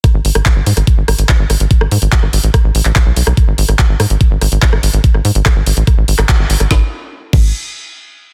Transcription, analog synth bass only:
X:1
M:4/4
L:1/16
Q:1/4=144
K:G#phr
V:1 name="Analog synth bass" clef=bass
z G,,, G,,, G,,, z G,,, G,, G,,, z G,,, G,,, G,,, z G,,, G,,, G,,, | z G,,, G,, G,,, z G,,, G,,, A,,, z A,,, A,,, A,,, z B,,, B,,, B,,, | z G,,, G,,, G,,, z G,,, G,, G,,, z G,,, G,,, G,,, z G,,, G,,, G,,, | z G,,, G,, G,,, z G,,, G,,, A,,, z A,,, G,,, G,,, z G,,, G,,, G,,, |
G,,, z4 z G,,,2 z8 |]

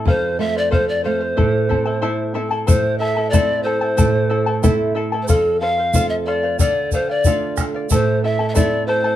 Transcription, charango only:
X:1
M:2/4
L:1/16
Q:1/4=92
K:Am
V:1 name="Charango"
[Acf]2 [Acf] [cf] [Acf]2 [Acf] [cf] | [EAcea]2 [EAea] [EAa] [EAcea]2 [EAea] [EAa] | [EAcea]2 [EAea] [EAa] [EAcea]2 [EAea] [EAa] | [EAcea]2 [EAea] [EAa] [EAcea]2 [EAea] [EAa] |
[Acf]2 [Acf] [cf] [Acf]2 [Acf] [cf] | [Adf]2 [Adf] [df] [Adf]2 [Adf] [df] | [EAcea]2 [EAea] [EAa] [EAcea]2 [EAea] [EAa] |]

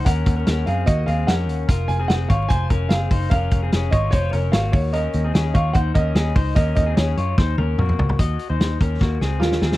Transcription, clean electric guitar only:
X:1
M:4/4
L:1/16
Q:1/4=148
K:Ebdor
V:1 name="Clean electric guitar"
[DB]3 [DB] [DB]2 [CA]2 [B,G]2 [CA]2 [DB]4 | [FB]3 [CA] [CA]2 [Fd]2 [Fc]2 [DB]2 [CA]2 [Ec]2 | [DB]3 [CA] [DA]2 [Fd]2 [Fc]2 [DB]2 [B,G]4 | [DB]3 [CA] [DA]2 [Fd]2 [Ec]2 [DB]2 [DA]2 [Ec]2 |
[DB]3 [CA] [DA]2 [Fd]2 [Ec]2 [DB]2 [B,G]4 | [Ge]3 [Ec]3 [DB]2 [B,G]2 [CA]2 [DB]2 [CA]2 |]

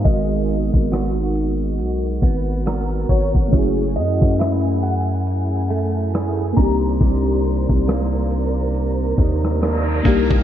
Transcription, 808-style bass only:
X:1
M:4/4
L:1/16
Q:"Swing 16ths" 1/4=69
K:Cphr
V:1 name="808-style bass" clef=bass
A,,,3 A,,,4- A,,, _C,,2 A,,,4 A,,, A,,, | _G,,,2 _G,, G,,8- G,,3 C,,2 | C,,3 C,,6- C,, E,,4 C,, C,, |]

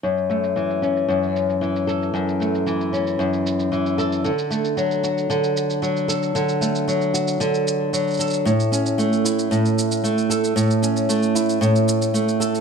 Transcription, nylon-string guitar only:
X:1
M:4/4
L:1/8
Q:1/4=114
K:F#m
V:1 name="Nylon-string guitar"
F,, A, E, C F,,2 E, A | F,, A, E, C F,,2 E, A | D, A, F, F D,2 F, A | D, A, F, F D,2 F, A |
A,, C A, E A,,2 A, A | A,, C A, E A,,2 A, A |]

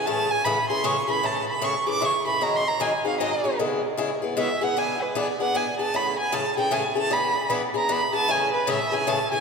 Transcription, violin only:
X:1
M:3/4
L:1/16
Q:"Swing" 1/4=153
K:A
V:1 name="Violin"
a2 g2 b2 =c'2 ^c'2 b2 | a2 b2 c'2 d'2 c'2 b2 | (3_b2 ^b2 _b2 g2 =f2 ^d3 z | z8 e2 f2 |
g2 B2 d2 f2 g2 a2 | b2 g2 a2 =g2 ^g2 a2 | b4 z2 _b2 =b2 a2 | g2 B2 e2 g2 a2 g2 |]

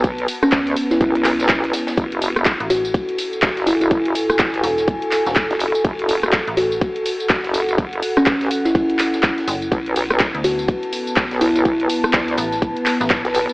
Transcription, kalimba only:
X:1
M:4/4
L:1/16
Q:"Swing 16ths" 1/4=124
K:F#m
V:1 name="Kalimba"
z3 C4 E E z6 z | z6 F z6 z E E | z16 | z6 F z8 z |
z3 C4 E E z6 z | z6 F z6 z E E | z16 |]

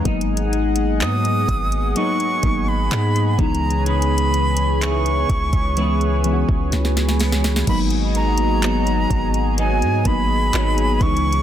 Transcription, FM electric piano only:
X:1
M:4/4
L:1/8
Q:1/4=63
K:G#m
V:1 name="FM electric piano"
[F,A,B,D]3 z [F,A,B,D] [F,A,B,D]2 [E,G,B,D]- | [E,G,B,D]2 z2 [E,G,B,C] [E,G,B,EF]2 z | [F,A,B,D]3 z2 [F,A,B,D]2 [E,G,B,D] |]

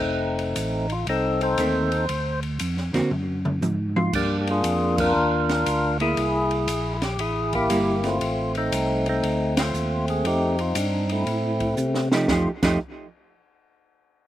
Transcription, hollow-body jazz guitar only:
X:1
M:4/4
L:1/8
Q:"Swing" 1/4=118
K:Fmix
V:1 name="Hollow-body jazz guitar"
z6 [E,A,C] z | z3 [D,^A,C^F] z4 | z6 z [B,=E]- | [B,=E]2 z4 [G,B,E] z |
z8 | z6 z [F,A,EG] | [F,A,EG] [F,A,EG] z6 |]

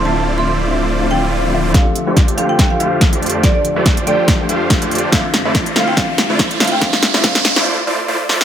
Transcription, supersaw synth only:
X:1
M:4/4
L:1/16
Q:"Swing 16ths" 1/4=142
K:F
V:1 name="Supersaw synth"
[A,EFcd]16 | [A,FGcd] z2 [A,FGcd]3 [A,FGcg]4 [A,FGcf]3 [A,FGcd]3 | [A,FGcd] z2 [A,FGcd]3 [A,FGcg]4 [A,FGcf]3 [A,FGcd]3 | [A,EFcd] z2 [A,EFcd]3 [A,EFcf]2 [A,EFcd] z2 [A,EFcd]3 [A,EFcf]2 |
[A,EFcd] z2 [A,EFcd] [A,EFcd] z2 [A,EFcd] [A,EFcd] z [A,EFcd] z [A,EFcd] z [A,EFcd] z |]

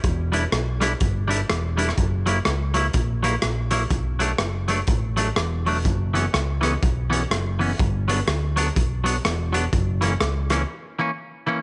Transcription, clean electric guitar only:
X:1
M:4/4
L:1/16
Q:"Swing" 1/4=124
K:F#phr
V:1 name="Clean electric guitar"
z2 [G,DE] z3 [G,DE] z3 [G,DE] z3 [G,DE] z | z2 [F,^A,E] z3 [F,A,E] z3 [F,A,E] z3 [F,A,E] z | z2 [F,A,D] z3 [F,A,D] z3 [F,A,D] z3 [F,A,D] z | z2 [E,B,C] z3 [E,B,C] z3 [E,B,C] z3 [E,B,C] z |
z2 [F,B,D] z3 [F,B,D] z3 [F,B,D] z3 [F,B,D] z | z2 [E,^A,C] z3 [E,A,C] z3 [E,A,C] z3 [E,A,C] z |]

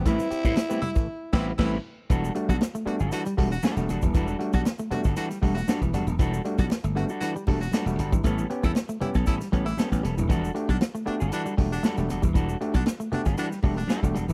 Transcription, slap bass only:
X:1
M:4/4
L:1/16
Q:1/4=117
K:Edor
V:1 name="Slap bass" clef=bass
A,,, z2 A,, z6 A,,,2 A,,,2 z2 | E,,,2 z B,,, z3 G,,, z2 E,,,2 z E,,, E,,, ^D,,, | E,,,2 z B,,, z3 G,,, z2 E,,,2 z E,,, E,,, ^D,,, | E,,,2 z B,,, z G,,,2 z3 E,,,2 z E,,, G,,, ^G,,, |
A,,,2 z E,, z3 B,,, z2 A,,,2 z A,,, E,,, ^D,,, | E,,,2 z B,,, z3 G,,, z2 E,,,2 z E,,, E,,, ^D,,, | E,,,2 z B,,, z3 G,,, z2 E,,,2 z E,,, E,,, ^D,,, |]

